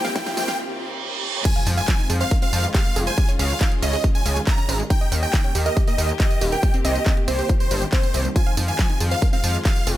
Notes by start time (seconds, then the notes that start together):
Already playing: D#3 A#3 C4 G4 G5, riser
0.05 F5, snare, closed hi-hat, tambourine
0.15 F4 G5, kick, snare, closed hi-hat, tambourine
0.26 F5, snare, closed hi-hat, tambourine
0.37 C2 F4 G5, snare, open hi-hat, tambourine
0.48 F5, snare, open hi-hat, tambourine
0.59 reverse cymbal
1.45 D#3 G#3 C4 F4 G#5, kick, closed hi-hat, crash, tambourine, impact
1.56 F5, closed hi-hat
1.67 F2 D#4, open hi-hat, tambourine
1.77 F5 G#5, closed hi-hat, tambourine
1.88 F3, kick, clap, closed hi-hat, tambourine
1.99 D#4, closed hi-hat
2.10 F2 G#4, open hi-hat, tambourine
2.21 C5 F5, closed hi-hat, tambourine
2.31 A#4, kick, closed hi-hat, tambourine
2.42 C4 F5, closed hi-hat, tambourine
2.53 F2, open hi-hat, tambourine
2.64 F5, closed hi-hat, tambourine
2.75 G4 F5, kick, clap, closed hi-hat, tambourine
2.85 closed hi-hat, tambourine
2.96 F1 G#4, open hi-hat, tambourine
3.07 C5 G#5, closed hi-hat, tambourine
3.18 D#3 C#4 G4, kick, closed hi-hat, tambourine
3.29 C#4, closed hi-hat, tambourine
3.39 C#2 C#4 F5, open hi-hat, tambourine
3.50 closed hi-hat, tambourine
3.61 D#4, kick, clap, closed hi-hat, tambourine
3.72 G#4, closed hi-hat
3.82 C#2 C#4 D#5, open hi-hat, tambourine
3.93 G#4, open hi-hat, tambourine
4.04 G4, kick, closed hi-hat, tambourine
4.15 G#5, closed hi-hat, tambourine
4.26 C#2 G#3, open hi-hat, tambourine
4.36 G#3, closed hi-hat, tambourine
4.47 D#4 A#5, kick, clap, closed hi-hat, tambourine
4.58 C#4, closed hi-hat, tambourine
4.69 G#1 C#4, open hi-hat, tambourine
4.80 G#3, closed hi-hat, tambourine
4.90 G3 A#3 D#4 G4 G5, kick, closed hi-hat, tambourine
5.01 D#5, closed hi-hat
5.12 D#2 C#4, open hi-hat, tambourine
5.23 D#5 G5, closed hi-hat, tambourine
5.33 D#3, kick, clap, closed hi-hat, tambourine
5.44 C#4, closed hi-hat
5.55 D#2 G4, open hi-hat, tambourine
5.66 A#4 D#5, closed hi-hat, tambourine
5.77 G4, kick, closed hi-hat, tambourine
5.88 A#3 D#5, closed hi-hat, tambourine
5.98 D#2, open hi-hat, tambourine
6.09 D#5, closed hi-hat, tambourine
6.20 F4 D#5, kick, clap, closed hi-hat, tambourine
6.31 closed hi-hat, tambourine
6.41 D#1 G4, open hi-hat, tambourine
6.52 A#4 G5, closed hi-hat, tambourine
6.63 C4 F4, kick, closed hi-hat, tambourine
6.74 C4, closed hi-hat, tambourine
6.85 C2 C4 D#5, open hi-hat, tambourine
6.96 closed hi-hat, tambourine
7.06 C4, kick, clap, closed hi-hat, tambourine
7.17 G4, closed hi-hat
7.28 C2 C4 C5, open hi-hat, tambourine
7.39 G4, open hi-hat, tambourine
7.49 F4, kick, closed hi-hat, tambourine
7.60 C5, closed hi-hat, tambourine
7.71 G1 G3, open hi-hat, tambourine
7.82 G3, closed hi-hat, tambourine
7.93 C4 C5, kick, clap, closed hi-hat, tambourine
8.03 C4, closed hi-hat, tambourine
8.14 C2 C4, open hi-hat, tambourine
8.25 G3, closed hi-hat, tambourine
8.36 G#3 F4 G#5, kick, closed hi-hat, tambourine
8.46 F5, closed hi-hat
8.57 F2 D#4, open hi-hat, ride, tambourine
8.68 F5 G#5, closed hi-hat, tambourine
8.79 F3, kick, clap, closed hi-hat, tambourine
8.90 D#4, closed hi-hat
9.00 F2 G#4, open hi-hat, ride, tambourine
9.11 C5 F5, closed hi-hat, tambourine
9.22 A#4, kick, closed hi-hat, tambourine
9.33 C4 F5, closed hi-hat, tambourine
9.44 F2, open hi-hat, ride, tambourine
9.54 F5, closed hi-hat, tambourine
9.65 G4 F5, kick, clap, closed hi-hat, tambourine
9.76 closed hi-hat, tambourine
9.87 F1 G#4, open hi-hat, ride, tambourine